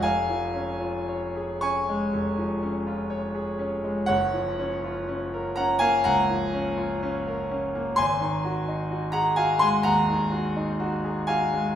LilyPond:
\new Staff \with { instrumentName = "Grand piano" } { \time 4/4 \key des \major \tempo 4 = 62 << { <f'' aes''>4. <aes'' des'''>2 r8 | <des'' ges''>4. <ges'' bes''>16 <f'' aes''>16 <ges'' bes''>2 | <aes'' c'''>4~ <aes'' c'''>16 <ges'' bes''>16 <f'' aes''>16 <aes'' c'''>16 <ges'' bes''>4. <f'' aes''>8 | } \\ { f,,16 f16 des'16 f'16 des''16 aes'16 des'16 aes16 f,,16 f16 des'16 f'16 des''16 aes'16 des'16 aes16 | ges,,16 f16 des'16 f'16 des'16 bes'16 des'16 bes16 des,16 f16 des'16 f'16 des'16 bes'16 des'16 bes16 | aes,,16 ees16 ges'16 ees'16 ges'16 aes'16 ges'16 aes16 ees,16 ees16 ges'16 ees'16 ges'16 aes'16 ges'16 aes16 | } >> }